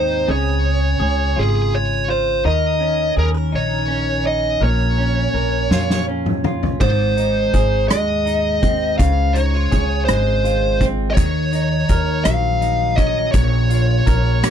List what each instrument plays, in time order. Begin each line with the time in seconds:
Already playing: upright bass D#2, clean electric guitar G#2 C4 D#4 G#4, lead electric guitar C5
0.28 upright bass C#2, clean electric guitar C#3 G#4, lead electric guitar C#5
1.00 upright bass C#2, clean electric guitar G#4
1.36 upright bass G#1, clean electric guitar F4, lead electric guitar G#4
1.75 lead electric guitar C#5
2.08 clean electric guitar F4, lead electric guitar C5
2.45 upright bass D#2, clean electric guitar D#3 A#4, lead electric guitar D#5
2.80 clean electric guitar C#4
3.17 upright bass D#2, clean electric guitar G#4, lead electric guitar A#4
3.34 clean electric guitar A#4
3.52 upright bass A#1, clean electric guitar D#4, lead electric guitar C#5
3.88 clean electric guitar C#4
4.24 clean electric guitar D#4, lead electric guitar D#5
4.61 upright bass A#1, clean electric guitar A#2 A#4, lead electric guitar C#5
4.98 clean electric guitar C#4
5.34 upright bass A#1, clean electric guitar A#4
5.70 upright bass F2, clean electric guitar F4, snare
5.90 snare
6.08 clean electric guitar C#4
6.26 mid tom
6.44 clean electric guitar F4, mid tom
6.63 floor tom
6.81 upright bass G#1, clean electric guitar G#2, lead electric guitar C5, kick, crash
7.17 clean electric guitar D#4, closed hi-hat
7.53 upright bass G#1, clean electric guitar G#4, kick, closed hi-hat
7.88 upright bass D#2, clean electric guitar G#3, lead electric guitar D#5, cross-stick, closed hi-hat
8.26 clean electric guitar D#4, closed hi-hat
8.62 clean electric guitar C4, kick, closed hi-hat
8.98 upright bass C#2, clean electric guitar C#3, lead electric guitar F5, kick, closed hi-hat
9.34 clean electric guitar D#4, lead electric guitar C#5, closed hi-hat
9.54 clean electric guitar F4
9.72 upright bass C#2, clean electric guitar G#4, kick, cross-stick, closed hi-hat
10.05 upright bass G#1, clean electric guitar G#3, lead electric guitar C5, cross-stick, closed hi-hat
10.44 clean electric guitar F4, closed hi-hat
10.80 clean electric guitar C4, kick, closed hi-hat
11.10 lead electric guitar C#5 D#5
11.16 upright bass D#2, clean electric guitar D#3, kick, closed hi-hat
11.53 clean electric guitar D#4, closed hi-hat
11.89 upright bass D#2, clean electric guitar A#4, kick, cross-stick, closed hi-hat
12.24 upright bass A#1, clean electric guitar F#3, lead electric guitar F5, cross-stick, closed hi-hat
12.61 clean electric guitar D#4, closed hi-hat
12.96 clean electric guitar C#4, lead electric guitar D#5, kick, closed hi-hat
13.32 upright bass A#1, clean electric guitar A#2, lead electric guitar C#5, kick, closed hi-hat
13.69 clean electric guitar F4, closed hi-hat
14.06 upright bass A#1, clean electric guitar A#4, kick, cross-stick, closed hi-hat
14.43 upright bass F2, clean electric guitar A#3, cross-stick, closed hi-hat